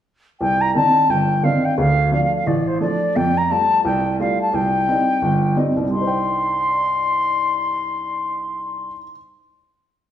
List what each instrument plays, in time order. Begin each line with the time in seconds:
0.41 upright piano C2, flute G5
0.61 flute A#5
0.75 upright piano D#3 C4 D4, flute A5
1.09 upright piano G1, flute G5
1.43 upright piano D#3 C4 D4, flute F5
1.65 flute G5
1.78 upright piano D2, flute F5
2.12 upright piano F3 A3 D4, flute F5
2.24 flute F5
2.36 flute F5
2.47 upright piano A1, flute D5
2.68 flute C5
2.81 upright piano F3 A3 D4, flute D5
3.16 upright piano F2, flute G5
3.38 flute A#5
3.50 upright piano G3 A3 F4, flute A5
3.85 upright piano C2, flute G5
4.19 upright piano G3 A3 F4, flute F5
4.41 flute A5
4.53 upright piano C2, flute G5
4.88 upright piano G3 C4 D#4
5.22 upright piano G1
5.56 upright piano G3 C4 D#4
5.76 upright piano C2
5.82 upright piano G2
5.88 upright piano G3, flute C6
5.95 upright piano D#4
6.01 upright piano C5
6.07 upright piano G5